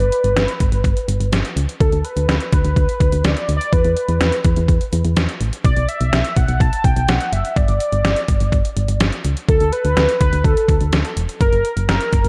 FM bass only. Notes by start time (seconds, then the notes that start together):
0.00 G1
0.24 G1
0.36 G1
0.60 G1
0.72 G1
0.84 G1
1.08 G1
1.20 G1
1.32 G1
1.56 C#2
1.81 D2
1.93 D2
2.17 D2
2.29 D2
2.53 D2
2.65 D2
2.76 D2
3.00 D2
3.12 D2
3.24 D2
3.49 D2
3.73 E2
3.85 E2
4.09 E2
4.21 E2
4.45 E2
4.57 E2
4.68 E2
4.93 E2
5.05 E2
5.17 E2
5.41 A1
5.64 B1
5.77 B1
6.01 B1
6.13 B1
6.37 B1
6.49 B1
6.60 B1
6.84 B1
6.96 B1
7.09 B1
7.32 F#1
7.56 G1
7.69 G1
7.92 G1
8.05 G1
8.28 G1
8.41 G1
8.52 G1
8.77 G1
8.89 G1
9.01 G1
9.25 C#2
9.49 D2
9.61 D2
9.85 D2
9.97 D2
10.21 D2
10.33 D2
10.44 D2
10.68 D2
10.81 D2
10.93 D2
11.17 E1
11.41 F#1
11.53 F#1
11.77 F#1
11.89 F#1
12.13 F#1
12.25 F#1